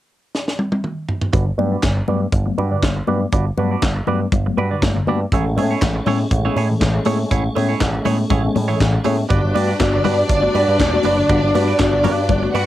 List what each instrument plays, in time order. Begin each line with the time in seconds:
0.35 snare
0.48 snare
0.59 high tom
0.72 high tom
0.84 mid tom
1.09 floor tom
1.21 floor tom
1.33 picked electric bass G1, tine electric piano G2 D3, clean electric guitar D4 F#4 B4 D5, kick, closed hi-hat, muted conga
1.58 picked electric bass G2, tine electric piano F#3 A3 B3, clean electric guitar D4 F#4 B4 D5, muted conga
1.72 tine electric piano A3 B3, clean electric guitar D4 F#4 B4 D5
1.82 picked electric bass G1, tine electric piano G2 D3, kick, snare, clap, closed hi-hat, high conga
1.96 muted clean electric guitar stroke
2.08 picked electric bass G2, tine electric piano F#3 A3 B3, clean electric guitar D4 F#4 B4 D5, low conga
2.22 tine electric piano A3 B3
2.32 picked electric bass G1, muted clean electric guitar stroke, kick, closed hi-hat
2.46 tine electric piano F#3 A3 B3, muted clean electric guitar stroke
2.58 picked electric bass G2, clean electric guitar D4 F#4 B4 D5, muted conga
2.71 tine electric piano G2 D3, clean electric guitar D4 F#4 B4 D5
2.82 picked electric bass G1, tine electric piano G2, muted clean electric guitar stroke, kick, snare, clap, closed hi-hat, high conga
2.96 muted clean electric guitar stroke
3.07 picked electric bass G2, tine electric piano F#3 A3 B3, clean electric guitar D4 F#4 B4 D5, high conga
3.21 tine electric piano A3 B3, muted clean electric guitar stroke
3.32 picked electric bass G1, tine electric piano G2 D3, clean electric guitar D4 F#4 B4 D5, kick, closed hi-hat, muted conga
3.46 muted clean electric guitar stroke
3.57 picked electric bass G2, tine electric piano F#3 A3 B3, clean electric guitar D4 F#4 B4 D5, muted conga
3.71 tine electric piano A3 B3, clean electric guitar D4 F#4 B4 D5
3.82 picked electric bass G1, tine electric piano G2 D3, kick, snare, clap, closed hi-hat, high conga
3.96 muted clean electric guitar stroke
4.07 picked electric bass G2, tine electric piano F#3 A3 B3, clean electric guitar D4 F#4 B4 D5, low conga
4.21 tine electric piano A3 B3, muted clean electric guitar stroke
4.32 picked electric bass G1, muted clean electric guitar stroke, kick, closed hi-hat, low conga
4.46 tine electric piano F#3 A3 B3, muted clean electric guitar stroke
4.57 picked electric bass G2, clean electric guitar D4 F#4 B4 D5, muted conga
4.71 tine electric piano G2 D3, clean electric guitar D4 F#4 B4 D5
4.82 picked electric bass G1, tine electric piano A3 B3, kick, snare, clap, closed hi-hat, high conga
4.96 tine electric piano G2 D3, muted clean electric guitar stroke
5.07 picked electric bass G2, tine electric piano A3 B3, clean electric guitar D4 F#4 B4 D5, high conga
5.32 picked electric bass A1, tine electric piano A2 E3, tonewheel organ G#3 A3 C#4, clean electric guitar A3 E4 G#4 C#5, kick, closed hi-hat, muted conga
5.46 muted clean electric guitar stroke
5.56 picked electric bass A2, tine electric piano G#3 B3 C#4, clean electric guitar A3 E4 G#4 C#5, open hi-hat, muted conga
5.71 clean electric guitar A3 E4 G#4 C#5, tine electric piano B3 C#4
5.81 picked electric bass A1, tine electric piano A2 E3, kick, snare, clap, closed hi-hat, high conga
5.96 muted clean electric guitar stroke
6.06 picked electric bass A2, tine electric piano G#3 B3 C#4, clean electric guitar A3 E4 G#4 C#5, open hi-hat, low conga
6.20 tine electric piano B3 C#4, muted clean electric guitar stroke
6.31 picked electric bass A1, muted clean electric guitar stroke, kick, closed hi-hat
6.45 tine electric piano G#3 B3 C#4, clean electric guitar A3 E4 G#4 C#5
6.56 picked electric bass A2, clean electric guitar A3 E4 G#4 C#5, open hi-hat, muted conga
6.70 tine electric piano A2 E3, muted clean electric guitar stroke
6.80 picked electric bass A1, tine electric piano A2 E3, muted clean electric guitar stroke, kick, snare, clap, closed hi-hat, high conga
6.94 muted clean electric guitar stroke
7.05 picked electric bass A2, tine electric piano G#3 B3 C#4, clean electric guitar A3 E4 G#4 C#5, open hi-hat, high conga
7.21 tine electric piano B3 C#4
7.31 picked electric bass A1, tine electric piano A2 E3, clean electric guitar A3 E4 G#4 C#5, kick, closed hi-hat, muted conga
7.55 picked electric bass A2, tine electric piano G#3 B3 C#4, clean electric guitar A3 E4 G#4 C#5, open hi-hat, muted conga
7.69 clean electric guitar A3 E4 G#4 C#5, tine electric piano B3 C#4
7.80 picked electric bass A1, tine electric piano A2 E3, kick, snare, clap, closed hi-hat, high conga
7.93 muted clean electric guitar stroke
8.05 picked electric bass A2, tine electric piano G#3 B3 C#4, clean electric guitar A3 E4 G#4 C#5, open hi-hat, low conga
8.18 tine electric piano B3 C#4, muted clean electric guitar stroke
8.30 picked electric bass A1, clean electric guitar A3 E4 G#4 C#5, kick, closed hi-hat, low conga
8.44 tine electric piano G#3 B3 C#4, muted clean electric guitar stroke
8.55 picked electric bass A2, muted clean electric guitar stroke, open hi-hat, muted conga, low conga
8.68 tine electric piano A2 E3, clean electric guitar A3 E4 G#4 C#5
8.80 picked electric bass A1, tine electric piano A2 E3, muted clean electric guitar stroke, kick, snare, clap, closed hi-hat, high conga
8.93 muted clean electric guitar stroke
9.04 picked electric bass A2, tine electric piano G#3 B3 C#4, clean electric guitar A3 E4 G#4 C#5, open hi-hat, high conga
9.18 tine electric piano B3 C#4, muted clean electric guitar stroke
9.29 picked electric bass G1, tine electric piano G2 D3, tonewheel organ G3 D4 F#4 B4, clean electric guitar D4 F#4 B4 D5, violin section D4 D5, kick, closed hi-hat, muted conga
9.42 picked electric bass G1, tine electric piano B3 F#4, muted clean electric guitar stroke
9.54 picked electric bass G2, tine electric piano A3 B3 F#4, clean electric guitar D4 F#4 B4 D5, open hi-hat, muted conga
9.68 clean electric guitar D4 F#4 B4 D5
9.79 picked electric bass G1, tine electric piano B3 F#4, kick, snare, clap, closed hi-hat, high conga
9.93 tine electric piano G2 D3, muted clean electric guitar stroke
10.04 picked electric bass G2, tine electric piano B3 F#4, clean electric guitar D4 F#4 B4 D5, open hi-hat, low conga
10.19 muted clean electric guitar stroke
10.29 picked electric bass G1, tine electric piano G2 D3, muted clean electric guitar stroke, kick, closed hi-hat
10.43 tine electric piano A3 B3 F#4, muted clean electric guitar stroke
10.54 picked electric bass G2, tine electric piano B3 F#4, clean electric guitar D4 F#4 B4 D5, open hi-hat, muted conga
10.68 picked electric bass G2, clean electric guitar D4 F#4 B4 D5
10.79 picked electric bass E1, kick, snare, clap, closed hi-hat, high conga
10.93 tine electric piano A3 B3 F#4, muted clean electric guitar stroke
11.03 picked electric bass F#1, clean electric guitar D4 F#4 B4 D5, open hi-hat, high conga
11.18 tine electric piano G2 D3, muted clean electric guitar stroke
11.29 picked electric bass G1, tine electric piano G2 D3, clean electric guitar D4 F#4 B4 D5, kick, closed hi-hat, muted conga
11.42 picked electric bass G1, tine electric piano B3 F#4, muted clean electric guitar stroke
11.54 picked electric bass G2, tine electric piano A3 B3 F#4, clean electric guitar D4 F#4 B4 D5, open hi-hat, muted conga
11.68 clean electric guitar D4 F#4 B4 D5
11.78 picked electric bass G1, tine electric piano B3 F#4, kick, snare, clap, closed hi-hat, high conga
11.93 tine electric piano G2 D3, muted clean electric guitar stroke
12.04 picked electric bass G2, tine electric piano B3 F#4, clean electric guitar D4 F#4 B4 D5, open hi-hat, low conga
12.18 muted clean electric guitar stroke
12.29 picked electric bass G1, tine electric piano G2 D3, muted clean electric guitar stroke, kick, closed hi-hat, low conga
12.42 tine electric piano A3 B3 F#4, muted clean electric guitar stroke
12.54 picked electric bass G2, clean electric guitar D4 F#4 B4 D5, violin section F#4 F#5, open hi-hat, muted conga